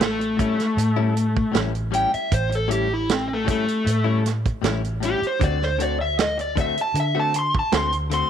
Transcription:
0.00 0.52 A1 loud
0.00 1.52 A3 medium
0.00 snare loud
0.00 closed hi-hat medium
0.19 muted clean electric guitar stroke soft
0.19 closed hi-hat soft
0.37 0.59 A2 medium
0.37 0.59 G3 medium
0.37 0.58 C#4 medium
0.37 0.57 E4 medium
0.37 kick medium
0.37 closed hi-hat medium
0.58 muted clean electric guitar stroke soft
0.58 snare soft
0.58 closed hi-hat soft
0.77 1.42 A2 loud
0.77 muted clean electric guitar stroke soft
0.77 closed hi-hat medium
0.96 1.13 A2 medium
0.96 1.14 G3 medium
0.96 1.15 C#4 medium
0.96 1.15 E4 medium
1.15 muted clean electric guitar stroke soft
1.15 closed hi-hat medium
1.37 kick medium
1.52 2.04 A1 medium
1.52 1.74 A2 medium
1.52 1.74 G3 medium
1.52 1.73 C#4 medium
1.52 1.72 E4 medium
1.52 snare loud
1.52 closed hi-hat medium
1.73 muted clean electric guitar stroke soft
1.73 closed hi-hat soft
1.91 2.13 A2 medium
1.91 2.11 G3 medium
1.91 2.11 C#4 medium
1.91 2.10 E4 medium
1.91 2.14 G5 loud
1.91 closed hi-hat medium
2.11 2.32 E5 medium
2.11 muted clean electric guitar stroke soft
2.11 muted fingered electric bass stroke soft
2.11 closed hi-hat soft
2.32 3.61 A1 loud
2.32 2.53 C5 medium
2.32 kick loud
2.32 closed hi-hat medium
2.50 muted clean electric guitar stroke soft
2.50 closed hi-hat soft
2.55 2.72 A4 medium
2.68 2.90 A2 medium
2.68 2.89 G3 medium
2.68 2.88 C#4 medium
2.68 2.88 E4 medium
2.68 closed hi-hat medium
2.73 2.92 G4 medium
2.89 muted clean electric guitar stroke soft
2.94 3.10 E4 medium
3.09 3.31 C4 medium
3.09 snare loud
3.09 closed hi-hat medium
3.28 muted clean electric guitar stroke soft
3.33 3.49 A3 medium
3.45 3.67 A2 medium
3.45 3.67 G3 medium
3.45 3.66 C#4 medium
3.45 3.65 E4 medium
3.45 kick medium
3.45 closed hi-hat medium
3.50 4.24 A3 loud
3.66 muted clean electric guitar stroke soft
3.66 closed hi-hat soft
3.85 4.51 A2 medium
3.85 muted clean electric guitar stroke soft
3.85 closed hi-hat medium
4.04 4.22 A2 medium
4.04 4.23 G3 medium
4.04 4.23 C#4 medium
4.04 4.24 E4 medium
4.24 muted clean electric guitar stroke soft
4.24 snare soft
4.24 closed hi-hat medium
4.46 kick medium
4.46 closed hi-hat soft
4.62 5.13 A1 medium
4.62 4.83 A2 medium
4.62 4.83 G3 medium
4.62 4.82 C#4 medium
4.62 4.82 E4 medium
4.62 snare loud
4.62 closed hi-hat medium
4.83 muted clean electric guitar stroke soft
4.83 closed hi-hat soft
5.00 5.22 A2 medium
5.00 5.22 G3 medium
5.00 5.21 C#4 medium
5.00 5.20 E4 medium
5.00 closed hi-hat medium
5.05 5.24 G4 loud
5.22 muted clean electric guitar stroke soft
5.22 muted fingered electric bass stroke soft
5.22 closed hi-hat soft
5.27 5.43 C5 medium
5.40 6.71 D2 loud
5.40 5.61 D3 medium
5.40 5.61 A3 medium
5.40 5.60 C4 medium
5.40 5.59 F#4 medium
5.40 kick loud
5.40 closed hi-hat medium
5.44 5.63 D5 medium
5.60 5.81 C5 medium
5.60 muted clean electric guitar stroke soft
5.60 snare soft
5.79 6.00 D3 medium
5.79 5.99 A3 medium
5.79 5.99 C4 medium
5.79 5.98 F#4 medium
5.79 6.01 D5 medium
5.79 closed hi-hat medium
5.99 6.19 E5 medium
5.99 muted clean electric guitar stroke soft
6.19 6.39 D#5 medium
6.19 snare loud
6.19 closed hi-hat medium
6.38 6.58 D5 medium
6.38 muted clean electric guitar stroke soft
6.38 closed hi-hat soft
6.56 6.77 D3 medium
6.56 6.77 A3 medium
6.56 6.76 C4 medium
6.56 6.75 F#4 medium
6.56 kick medium
6.56 closed hi-hat medium
6.60 6.79 E5 medium
6.76 muted clean electric guitar stroke soft
6.76 closed hi-hat soft
6.81 6.97 A5 medium
6.94 7.60 D3 medium
6.94 muted clean electric guitar stroke soft
6.94 closed hi-hat medium
7.00 7.18 E5 medium
7.15 7.33 D3 medium
7.15 7.33 A3 medium
7.15 7.34 C4 medium
7.15 7.34 F#4 medium
7.20 7.36 A5 medium
7.34 muted clean electric guitar stroke soft
7.34 closed hi-hat medium
7.39 7.57 C6 medium
7.55 kick medium
7.59 7.75 A5 medium
7.72 8.22 D2 medium
7.72 7.93 D3 medium
7.72 7.93 A3 medium
7.72 7.92 C4 medium
7.72 7.91 F#4 medium
7.72 7.94 C6 loud
7.72 snare loud
7.72 closed hi-hat medium
7.92 muted clean electric guitar stroke soft
7.92 closed hi-hat soft
8.10 8.30 D3 medium
8.10 8.30 A3 medium
8.10 8.30 C4 medium
8.10 8.30 F#4 medium
8.10 closed hi-hat medium
8.14 8.30 C6 medium

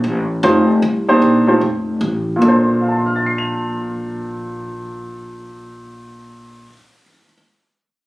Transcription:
0.04 0.42 A1 loud
0.43 0.82 F1 loud
0.43 0.67 A3 medium
0.43 0.67 D#4 medium
0.43 0.67 F4 medium
0.43 0.67 G4 medium
0.43 0.67 C5 medium
0.82 1.21 C2 loud
1.09 1.46 A#3 medium
1.09 1.46 D4 medium
1.09 1.46 D#4 medium
1.09 1.46 G4 medium
1.09 1.46 C5 medium
1.22 1.61 A#1 medium
1.47 1.60 A3 medium
1.47 1.61 D#4 medium
1.47 1.61 F4 medium
1.47 1.61 G4 medium
1.47 1.61 C5 medium
1.61 2.00 F1 medium
2.01 2.40 A1 loud
2.36 6.62 A#2 medium
2.36 6.65 A#3 medium
2.42 6.64 A#1 loud
2.42 6.68 D4 medium
2.42 6.71 A4 medium
2.48 6.74 C5 medium
2.81 7.03 F5 soft
2.88 7.07 A5 soft
2.97 7.11 C6 soft
3.06 7.16 F6 soft
3.16 7.20 A6 soft
3.26 7.26 C7 soft
3.38 7.32 F7 soft

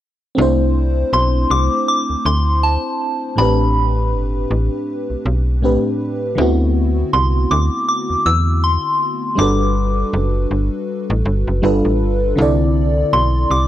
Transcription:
0.35 1.04 C2 loud
0.35 3.33 A3 medium
0.35 3.32 C4 medium
0.35 3.34 D4 medium
0.40 3.35 E4 medium
0.40 3.36 C5 medium
1.13 1.46 B1 medium
1.13 1.52 C6 medium
1.50 1.69 C2 medium
1.50 1.86 D6 medium
1.88 2.23 D6 medium
2.10 2.16 D2 soft
2.25 2.78 D2 medium
2.25 2.60 C6 medium
2.63 3.40 A5 medium
3.36 4.14 A1 loud
3.36 5.58 A2 medium
3.36 5.58 A3 medium
3.36 5.59 C4 medium
3.36 5.59 D4 medium
3.36 4.09 B5 medium
3.41 5.60 G4 medium
3.41 5.61 B4 medium
4.13 4.46 G1 loud
4.51 4.70 A1 medium
5.10 5.16 B1 soft
5.26 5.78 B1 medium
5.62 6.37 A2 medium
5.62 6.35 A3 medium
5.62 6.37 C4 medium
5.62 6.38 D4 medium
5.62 6.39 G4 medium
5.62 6.39 B4 medium
6.35 7.04 D2 loud
6.35 9.32 D3 medium
6.35 9.33 A3 medium
6.35 9.34 C4 medium
6.35 9.34 E4 medium
6.41 9.36 B3 medium
6.41 9.35 F#4 medium
7.13 7.46 C2 loud
7.13 7.52 C6 medium
7.51 7.70 D2 medium
7.51 7.85 D6 medium
7.89 8.27 D6 medium
8.10 8.16 E2 soft
8.26 8.78 E2 medium
8.26 8.40 E6 medium
8.64 9.40 C6 medium
9.35 10.04 G1 loud
9.35 11.58 G3 medium
9.35 11.58 D4 medium
9.35 11.59 F#4 medium
9.35 10.09 D6 medium
9.40 11.60 A4 medium
9.40 11.61 B4 medium
10.13 10.46 F#1 loud
10.51 10.70 G1 medium
11.10 11.24 A1 loud
11.25 11.45 G1 medium
11.47 11.61 F#1 medium
11.62 11.82 G1 loud
11.62 12.37 G3 medium
11.62 12.38 D4 medium
11.62 12.38 F4 medium
11.62 12.39 A4 medium
11.62 12.39 B4 medium
11.85 12.02 A1 medium
12.01 12.34 G1 medium
12.36 13.04 C2 loud
12.36 13.68 D3 medium
12.36 13.68 C4 medium
12.36 13.68 E4 medium
12.40 13.68 A4 medium
12.40 13.68 D5 medium
13.13 13.46 B1 loud
13.13 13.48 C6 medium
13.50 13.68 C2 medium
13.50 13.68 D6 medium

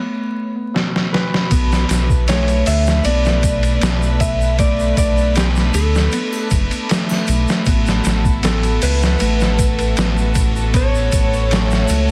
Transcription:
0.00 1.76 A3 medium
0.00 1.51 B3 medium
0.74 1.56 B2 medium
0.74 snare medium
0.96 snare medium
1.13 3.18 B4 loud
1.13 snare medium
1.34 snare medium
1.51 1.85 B1 medium
1.51 7.63 A3 medium
1.51 3.05 B3 loud
1.51 7.63 D4 medium
1.51 7.63 B4 medium
1.51 kick loud
1.51 ride medium
1.51 shaker soft
1.72 snare medium
1.72 shaker soft
1.89 2.63 B1 medium
1.89 snare medium
1.89 ride medium
1.89 shaker medium
2.10 kick loud
2.10 shaker soft
2.28 4.59 A3 medium
2.28 2.64 C#5 loud
2.28 snare loud
2.28 ride medium
2.28 shaker soft
2.48 ride soft
2.48 shaker soft
2.66 3.01 D2 loud
2.66 3.03 E5 loud
2.66 open hi-hat medium
2.66 shaker medium
2.86 snare medium
2.86 shaker soft
3.04 3.78 B1 medium
3.04 3.82 B3 medium
3.04 4.24 D5 loud
3.04 ride medium
3.04 shaker soft
3.25 snare soft
3.25 shaker soft
3.43 kick medium
3.43 ride medium
3.43 shaker medium
3.63 ride soft
3.63 shaker soft
3.81 4.94 B1 loud
3.81 5.36 B3 medium
3.81 snare loud
3.81 ride medium
3.81 shaker soft
4.02 shaker soft
4.20 4.56 E5 loud
4.20 kick medium
4.20 ride medium
4.20 shaker medium
4.41 shaker soft
4.59 6.89 A3 medium
4.59 4.97 D5 loud
4.59 kick loud
4.59 ride medium
4.59 shaker medium
4.79 shaker soft
4.97 5.71 B1 medium
4.97 5.34 D5 medium
4.97 kick loud
4.97 ride medium
4.97 shaker loud
5.18 shaker soft
5.36 6.12 B3 medium
5.36 5.47 G4 medium
5.36 snare loud
5.36 ride medium
5.36 shaker medium
5.56 snare soft
5.56 shaker soft
5.74 6.08 D2 loud
5.74 6.47 A4 medium
5.74 ride medium
5.74 triangle medium
5.74 shaker loud
5.95 snare soft
5.95 shaker soft
6.12 7.66 B3 loud
6.12 ride medium
6.12 shaker medium
6.33 triangle medium
6.33 shaker soft
6.51 6.69 F#1 medium
6.51 kick loud
6.51 ride medium
6.51 shaker medium
6.71 ride soft
6.71 shaker soft
6.89 9.20 A3 medium
6.89 snare loud
6.89 ride medium
6.89 shaker medium
7.09 snare soft
7.09 triangle medium
7.09 shaker soft
7.28 7.46 B1 medium
7.28 ride medium
7.28 shaker medium
7.48 snare medium
7.48 shaker soft
7.66 8.01 A1 loud
7.66 8.43 B3 medium
7.66 10.71 E4 medium
7.66 12.11 F#4 medium
7.66 12.11 A4 medium
7.66 kick loud
7.66 ride medium
7.66 shaker medium
7.86 snare medium
7.86 shaker soft
8.05 8.79 A1 medium
8.05 snare medium
8.05 ride medium
8.05 shaker medium
8.25 kick loud
8.25 shaker soft
8.43 9.97 B3 loud
8.43 8.84 A4 loud
8.43 snare loud
8.43 ride medium
8.43 shaker medium
8.63 ride soft
8.63 shaker soft
8.82 9.16 C#2 loud
8.82 10.32 B4 loud
8.82 open hi-hat medium
8.82 shaker medium
9.02 snare medium
9.02 shaker soft
9.20 9.94 A1 medium
9.20 11.51 A3 medium
9.20 ride medium
9.20 shaker medium
9.40 snare soft
9.40 shaker soft
9.59 kick loud
9.59 ride medium
9.59 shaker loud
9.79 ride soft
9.79 shaker soft
9.97 11.09 A1 loud
9.97 10.74 B3 medium
9.97 snare loud
9.97 ride medium
9.97 shaker medium
10.18 shaker soft
10.35 kick loud
10.35 ride medium
10.35 shaker medium
10.56 shaker soft
10.74 12.11 B3 loud
10.74 12.11 C#5 loud
10.74 12.11 F#5 medium
10.74 kick loud
10.74 ride medium
10.74 shaker soft
10.95 shaker soft
11.12 11.86 A1 medium
11.12 kick medium
11.12 ride medium
11.12 shaker loud
11.34 shaker soft
11.51 12.11 A3 medium
11.51 snare loud
11.51 ride medium
11.51 shaker soft
11.71 snare medium
11.71 shaker soft
11.88 12.11 C#2 loud
11.88 ride medium
11.88 triangle medium
11.88 shaker loud

